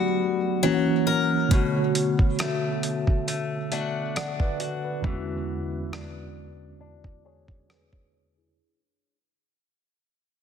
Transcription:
Already playing: steel-string acoustic guitar D3 G3 B3 F#4, tine electric piano F#3 A3 B3
0.63 tine electric piano E3 A#3 C#4, steel-string acoustic guitar F#3
1.07 steel-string acoustic guitar A#4
1.49 steel-string acoustic guitar B2, tine electric piano D3 A3 B3, kick, closed hi-hat
1.53 tine electric piano F#4 C#5
1.95 closed hi-hat
2.19 kick
2.39 steel-string acoustic guitar A3, cross-stick, closed hi-hat
2.83 closed hi-hat
3.07 kick
3.28 steel-string acoustic guitar A3, closed hi-hat
3.71 steel-string acoustic guitar A3 D4 F#4, closed hi-hat
4.16 steel-string acoustic guitar D4, tine electric piano D5 F#5, cross-stick, closed hi-hat
4.40 tine electric piano B4 D5, kick
4.60 steel-string acoustic guitar F#4, closed hi-hat
4.85 tine electric piano B4
5.01 tine electric piano E2 D3 G#3 B3, steel-string acoustic guitar E3, kick
5.06 tine electric piano C#4 F#4
5.92 steel-string acoustic guitar D4, cross-stick
6.80 steel-string acoustic guitar D4
7.04 kick
7.25 steel-string acoustic guitar D4 G#4 C#5
7.48 kick
7.69 steel-string acoustic guitar G#4, tine electric piano G#4 B4, cross-stick
7.93 tine electric piano C#5, kick
8.13 steel-string acoustic guitar C#5
8.38 tine electric piano E4 G#4

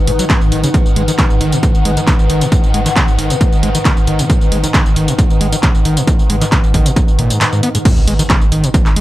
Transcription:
Already playing: synth drone G#2 D#3, ambient pad D#4 B4 F#5
0.07 sub bass G#1, acid bass G#2, open hi-hat
0.19 acid bass F#3, closed hi-hat, tambourine
0.30 acid bass B3, kick, clap, closed hi-hat, tambourine
0.41 sub bass G#1, tambourine
0.52 sub bass G#1, acid bass D#3, open hi-hat
0.64 acid bass C#3, closed hi-hat, tambourine
0.74 acid bass G#2, kick, closed hi-hat, tambourine
0.86 sub bass G#1, tambourine
0.96 sub bass G#1, acid bass G#3, open hi-hat
1.08 acid bass D#3, closed hi-hat, tambourine
1.19 acid bass C#3, kick, clap, closed hi-hat, tambourine
1.30 sub bass G#1, tambourine
1.41 sub bass G#1, acid bass D#3, open hi-hat
1.52 acid bass B2, closed hi-hat, tambourine
1.63 acid bass G#2, kick, closed hi-hat, tambourine
1.75 sub bass G#1, tambourine
1.85 sub bass G#1, acid bass G#3, open hi-hat
1.97 acid bass D#3, closed hi-hat, tambourine
2.07 acid bass C#3, kick, clap, closed hi-hat, tambourine
2.19 sub bass G#1, tambourine
2.30 sub bass G#1, acid bass D#3, open hi-hat
2.41 acid bass B2, closed hi-hat, tambourine
2.52 acid bass G#2, kick, closed hi-hat, tambourine
2.64 sub bass G#1, tambourine
2.74 sub bass G#1, acid bass G#3, open hi-hat
2.86 acid bass D#3, clap, closed hi-hat, tambourine
2.96 acid bass C#3, kick, clap, closed hi-hat, tambourine
3.08 sub bass G#1, tambourine
3.18 sub bass G#1, acid bass D#3, open hi-hat
3.30 acid bass B2, closed hi-hat, tambourine
3.41 acid bass G#2, kick, closed hi-hat, tambourine
3.52 sub bass G#1, tambourine
3.63 sub bass G#1, acid bass G#3, open hi-hat
3.75 acid bass D#3, closed hi-hat, tambourine
3.85 acid bass C#3, kick, clap, closed hi-hat, tambourine
3.97 sub bass G#1, tambourine
4.07 sub bass G#1, acid bass D#3, open hi-hat
4.19 acid bass B2, closed hi-hat, tambourine
4.30 acid bass G#2, kick, closed hi-hat, tambourine
4.41 sub bass G#1, tambourine
4.52 sub bass G#1, acid bass G#3, open hi-hat
4.64 acid bass D#3, closed hi-hat, tambourine
4.74 acid bass C#3, kick, clap, closed hi-hat, tambourine
4.86 sub bass G#1, tambourine
4.96 sub bass G#1, acid bass D#3, open hi-hat
5.08 acid bass B2, closed hi-hat, tambourine
5.19 acid bass G#2, kick, closed hi-hat, tambourine
5.30 sub bass G#1, tambourine
5.41 sub bass G#1, acid bass G#3, open hi-hat
5.52 acid bass D#3, closed hi-hat, tambourine
5.63 acid bass C#3, kick, clap, closed hi-hat, tambourine
5.75 sub bass G#1, tambourine
5.85 sub bass G#1, acid bass D#3, open hi-hat
5.97 acid bass B2, closed hi-hat, tambourine
6.07 acid bass G#2, kick, closed hi-hat, tambourine
6.19 sub bass G#1, tambourine
6.30 sub bass G#1, acid bass G#3, open hi-hat
6.41 acid bass D#3, clap, closed hi-hat, tambourine
6.52 acid bass C#3, kick, clap, closed hi-hat, tambourine
6.64 sub bass G#1, tambourine
6.74 sub bass G#1, acid bass D#3, kick, open hi-hat
6.86 acid bass B2, closed hi-hat, tambourine
6.96 acid bass G#2, kick, closed hi-hat, tambourine
7.08 sub bass G#1, tambourine
7.19 sub bass G#1, acid bass A#2, open hi-hat
7.30 acid bass G#2, closed hi-hat, tambourine
7.41 acid bass G#2, clap, closed hi-hat, tambourine
7.53 acid bass G#2, tambourine
7.63 acid bass B3, open hi-hat
7.75 acid bass G#2, closed hi-hat, tambourine
7.85 synth drone G#2 D#3, acid bass G#2, ambient pad D#4, kick, closed hi-hat, crash, tambourine, impact
7.97 sub bass G#1, tambourine
8.02 ambient pad B4
8.07 sub bass G#1, acid bass G#3, ambient pad G#5, open hi-hat
8.19 acid bass D#3, closed hi-hat, tambourine
8.30 acid bass C#3, kick, clap, closed hi-hat, tambourine
8.41 sub bass G#1, tambourine
8.52 sub bass G#1, acid bass D#3, open hi-hat
8.64 acid bass B2, closed hi-hat, tambourine
8.74 acid bass G#2, kick, closed hi-hat, tambourine
8.86 sub bass G#1, clap, tambourine
8.96 sub bass G#1, acid bass G#3, open hi-hat

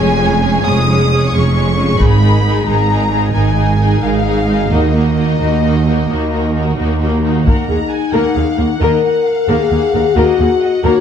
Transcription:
Already playing: double bass section F1, cello section F2, viola section G#3 C#4, violin section G#5
0.00 violin section G#4 C#5
0.18 viola section G#3 C#4, violin section G#4 C#5
0.40 viola section G#3 C#4, violin section G#4 C#5
0.64 double bass section F1, cello section F2, viola section G#3 C#4, violin section C#5 D#6
0.68 violin section G#4
0.87 viola section G#3 C#4, violin section G#4 C#5
1.10 viola section G#3 C#4
1.14 violin section G#4 C#5
1.31 double bass section F1, cello section F2, viola section G#3 C#4, violin section C#6
1.36 violin section G#4 C#5
1.54 viola section G#3 C#4, violin section G#4 C#5
1.76 viola section G#3 C#4, violin section G#4 C#5
1.98 double bass section G#1, cello section G#2, viola section G#3 D#4, violin section G#4 A#4 B5, taiko
2.22 viola section G#3 D#4, violin section G#4 A#4
2.44 viola section G#3 D#4, violin section G#4 A#4
2.66 double bass section G#1, cello section G#2, viola section G#3 D#4, violin section G#4 A#4 A#5
2.89 viola section G#3 D#4, violin section G#4 A#4
3.10 viola section G#3 D#4, violin section G#4 A#4
3.32 double bass section G#1, cello section G#2, viola section G#3 D#4, violin section G#4 A#4 G#5
3.56 viola section G#3 D#4, violin section G#4 A#4
3.78 viola section G#3 D#4, violin section G#4 A#4
4.02 double bass section G#1, cello section G#2, viola section G#3 D#4, violin section G#4 A#4 F5
4.24 viola section G#3 D#4, violin section G#4 A#4
4.47 viola section G#3 D#4, violin section G#4 A#4
4.69 cello section D#2, double bass section D#2, viola section A#3 D#4, violin section F#4 A#4 D#5
4.93 viola section A#3 D#4, violin section F#4 A#4
5.17 viola section A#3 D#4, violin section F#4 A#4
5.39 double bass section D#2, cello section D#2, viola section A#3 D#4, violin section F#4 A#4
5.62 viola section A#3 D#4, violin section F#4 A#4
5.86 viola section A#3 D#4, violin section F#4 A#4
6.08 double bass section D#2, cello section D#2, viola section A#3 D#4, violin section F#4 A#4
6.31 viola section A#3 D#4, violin section F#4 A#4
6.53 viola section A#3 D#4, violin section F#4 A#4
6.77 double bass section D#2, cello section D#2, viola section A#3 D#4, violin section F#4 A#4
7.00 viola section A#3 D#4, violin section F#4 A#4
7.23 viola section A#3 D#4, violin section F#4 A#4
7.45 double bass section D#2, cello section D#2, viola section A#3 A#4, french horn section D#4, violin section F#5, taiko
7.67 cello section D#2, double bass section D#2, viola section A#3 G#4, violin section A#5
7.91 violin section G#5
8.13 double bass section D#2, cello section D#2, viola section A#3 A#4, violin section F#5
8.36 double bass section D#2, cello section D#2, viola section A#3 G#4, violin section F5
8.58 cello section D#2, double bass section D#2, viola section A#3 A#4, violin section F#5
8.80 cello section D#2, double bass section D#2, viola section A#3 A#4, french horn section A#4, violin section D#5
9.05 violin section F#5
9.28 violin section F5
9.48 cello section D#2, double bass section D#2, viola section A#3 A#4, french horn section G#4
9.71 double bass section D#2, cello section D#2, viola section A#3 G#4
9.94 double bass section D#2, cello section D#2, viola section A#3 A#4
10.15 double bass section D#2, cello section D#2, viola section A#3 A#4, french horn section F#4, violin section D#5
10.39 cello section D#2, double bass section D#2, viola section A#3 G#4, violin section F#5
10.62 violin section D#5
10.84 double bass section D#2, cello section D#2, viola section A#3 A#4, french horn section F#4, violin section C#5

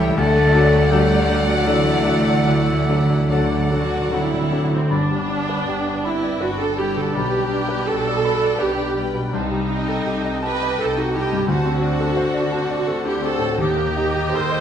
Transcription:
Already playing: trombone section E3 G3, cello section E3, grand piano G3 E4 A4, french horn section E4, violin section C#5, flute section G5
0.00 viola section A3, violin section G5
0.16 grand piano D2, double bass section D2, trombone section D3 F#3, cello section A3, viola section A3, french horn section A4, clarinet D5, violin section D5 F#5, flute section F#5, oboe A5
0.54 grand piano F#3 D4 A4
0.90 grand piano F#3 D4 A4, cello section G3, french horn section G4, oboe G5
0.99 timpani D3
1.07 timpani D3
1.14 timpani D3
1.28 grand piano F#3 D4 A4
1.36 timpani D3
1.45 timpani D3, cello section F#3, french horn section F#4, oboe F#5
1.51 timpani D3
1.59 timpani D3
1.64 timpani D3, cello section E3, grand piano F#3 D4 A4, french horn section E4, oboe E5
1.75 timpani D3
1.83 timpani D3
2.04 timpani D3, grand piano F#3 D4 A4
2.16 timpani D3
2.24 timpani D3
2.33 timpani D3
2.46 grand piano D2, cello section E3, french horn section E4, oboe E5
2.59 timpani D3
2.68 timpani D3
2.85 timpani D3
2.89 grand piano F#3 D4 A4
2.93 timpani D3
3.02 timpani D3
3.10 timpani D3
3.19 timpani D3
3.27 timpani D3, grand piano F#3 D4 A4, viola section A3, french horn section D4, clarinet D5, oboe D5, violin section F#5, flute section F#5
3.31 cello section D3, timpani D3, violin section D5
3.43 timpani D3
3.51 timpani D3
3.59 timpani D3
3.68 timpani D3, grand piano F#3 D4 A4, viola section F#4
3.72 timpani D3, clarinet D4
3.84 timpani D3
3.92 timpani D3
4.00 timpani D3
4.08 timpani D3, grand piano F#3 D4 A4, clarinet C4, viola section E4
4.17 timpani D3
4.25 timpani D3
4.34 timpani D3
4.42 timpani D3
4.49 timpani D3, grand piano F#3 D4 A4
4.58 timpani D3
4.65 timpani D3
4.72 timpani D3, clarinet A3, viola section C4
4.81 timpani D3
4.90 double bass section G1, grand piano G2, timpani G2, cello section G2, french horn section G3 B3, clarinet B3, viola section D4, oboe D5, flute section B5
5.11 grand piano G3
5.29 grand piano D4, violin section B4 D5 G5
5.49 grand piano B4
5.67 double bass section G1, cello section G2, grand piano G4
5.88 grand piano D5
6.04 clarinet C4, viola section E4, violin section B4 D5 G5, grand piano B5
6.23 grand piano D5
6.41 double bass section G1, cello section G2, clarinet D4, viola section F#4, grand piano B4
6.59 grand piano D4, clarinet F#4, viola section A4
6.77 grand piano G3, clarinet E4, viola section G4, violin section B4 D5 G5
6.95 grand piano D3, clarinet F#4, viola section A4
7.12 grand piano B1, double bass section B1, cello section B2, clarinet D4, viola section G4, violin section B4 D5 G5, oboe D5, flute section B5
7.33 grand piano G3
7.51 grand piano D4, violin section B4 D5 G5
7.69 grand piano B4
7.86 double bass section B1, cello section B2, clarinet F#4, grand piano G4, viola section A4
8.07 grand piano D5
8.23 violin section B4 D5 G5, grand piano B5
8.42 grand piano D5
8.59 double bass section B1, cello section B2, clarinet D4, viola section G4, grand piano B4
8.77 grand piano D4
8.96 grand piano G3, violin section B4 D5 G5
9.14 grand piano B2
9.32 grand piano C2, double bass section C2, cello section C3, french horn section A3 C4, clarinet C4, viola section D#4, oboe C5, flute section A5
9.51 grand piano G3
9.70 grand piano D#4, violin section D#5 G5 A5
9.88 grand piano A4
10.06 double bass section C2, cello section C3, grand piano G4
10.24 grand piano D#5
10.43 clarinet G4, viola section B4, violin section D#5 G5 A5, grand piano A5
10.61 grand piano D#5
10.78 double bass section C2, cello section C3, clarinet D#4, grand piano A4, viola section A4
10.97 grand piano D#4, clarinet D#4, viola section F#4
11.14 grand piano G3, clarinet E4, viola section G4, violin section D#5 G5 A5
11.32 grand piano G2
11.47 grand piano D2, double bass section D2, timpani D3, cello section D3, clarinet D4, viola section F#4, oboe C5, violin section C5 F#5 A5, flute section A5
11.65 grand piano C4
11.82 grand piano D4, violin section C5 F#5 A5
12.00 grand piano A4
12.17 double bass section D2, cello section D3, grand piano C5
12.34 grand piano D5
12.51 violin section C5 F#5 A5, grand piano A5
12.70 grand piano D5
12.87 double bass section D2, cello section D3, grand piano A4
13.05 grand piano D4, clarinet E4, viola section G4
13.22 grand piano C4, clarinet F#4, viola section A4, violin section C5 F#5 A5
13.39 grand piano A2
13.57 grand piano D#2, double bass section D#2, cello section D#3, french horn section G3 D#4, clarinet D#4, viola section G4, oboe D#5, flute section G5
13.76 grand piano A#3
13.96 grand piano D#4, violin section A#4 D#5 G5
14.16 grand piano G4
14.33 double bass section D#2, cello section D#3, clarinet A4, grand piano A#4, viola section C5
14.51 grand piano D#5

